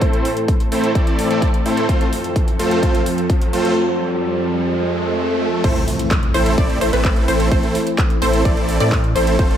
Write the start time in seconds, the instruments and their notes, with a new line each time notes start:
Already playing: analog synth pad A2 E3 C4 A4, riser
0.01 supersaw synth A3 C4 E4 A4 C5, kick, closed hi-hat
0.13 closed hi-hat
0.25 open hi-hat
0.37 closed hi-hat
0.48 kick, closed hi-hat
0.60 closed hi-hat
0.72 supersaw synth A3 C4 E4 A4 C5, open hi-hat
0.84 closed hi-hat
0.95 supersaw synth A3 C4 E4 A4 D5, kick, closed hi-hat
1.07 closed hi-hat
1.19 open hi-hat
1.30 supersaw synth A3 C4 E4 A4 D5, closed hi-hat
1.42 kick, closed hi-hat
1.54 closed hi-hat
1.66 supersaw synth A3 C4 E4 A4 C5, open hi-hat
1.77 closed hi-hat
1.89 analog synth pad F2 F3, supersaw synth A3 C4 F4 A4 C5, kick, closed hi-hat
2.01 closed hi-hat
2.13 open hi-hat
2.24 closed hi-hat
2.36 kick, closed hi-hat
2.48 closed hi-hat
2.59 supersaw synth A3 C4 F4 A4 C5, open hi-hat
2.71 closed hi-hat
2.83 supersaw synth A3 C4 F4 A4 C5, kick, closed hi-hat
2.95 closed hi-hat
3.06 open hi-hat
3.18 closed hi-hat
3.30 kick, closed hi-hat
3.41 closed hi-hat
3.53 supersaw synth A3 C4 F4 A4 C5, open hi-hat
3.65 closed hi-hat
4.70 swell
5.64 sub bass A1, analog synth pad E3 A3 C4, supersaw synth A3 C4 E4 A4 C5, synth pluck C5, kick, closed hi-hat, crash, impact
5.76 closed hi-hat
5.88 open hi-hat
5.99 closed hi-hat
6.11 kick, clap, closed hi-hat
6.23 closed hi-hat
6.34 sub bass A1, supersaw synth A3 C4 E4 A4 C5, synth pluck C5, open hi-hat
6.46 closed hi-hat
6.58 sub bass A1, supersaw synth A3 C4 E4 A4 D5, synth pluck D5, kick, closed hi-hat
6.70 closed hi-hat
6.81 sub bass A1, supersaw synth A3 C4 E4 A4 C5, synth pluck C5, open hi-hat
6.93 sub bass A1, supersaw synth A3 C4 E4 A4 B4, synth pluck B4, closed hi-hat
7.05 kick, clap, closed hi-hat
7.16 closed hi-hat
7.28 sub bass A1, supersaw synth A3 C4 E4 A4 C5, synth pluck C5, open hi-hat
7.40 closed hi-hat
7.51 sub bass A1, supersaw synth A3 C4 E4 A4 C5, synth pluck C5, kick, closed hi-hat
7.63 closed hi-hat
7.75 open hi-hat
7.87 closed hi-hat
7.98 kick, clap, closed hi-hat
8.10 closed hi-hat
8.22 sub bass A1, supersaw synth A3 C4 E4 A4 C5, synth pluck C5, open hi-hat
8.33 closed hi-hat
8.45 sub bass A1, supersaw synth A3 C4 E4 A4, synth pluck D5, kick, closed hi-hat
8.57 closed hi-hat
8.69 open hi-hat
8.80 sub bass A2, supersaw synth A3 C4 E4 A4 D5, synth pluck D5, closed hi-hat
8.92 kick, clap, closed hi-hat
9.04 closed hi-hat
9.15 sub bass A1, supersaw synth A3 C4 E4 A4 C5, synth pluck C5, open hi-hat
9.27 closed hi-hat
9.39 sub bass F1, analog synth pad F3 A3, supersaw synth A3 C4 F4 A4 C5, synth pluck C5, kick, closed hi-hat
9.51 closed hi-hat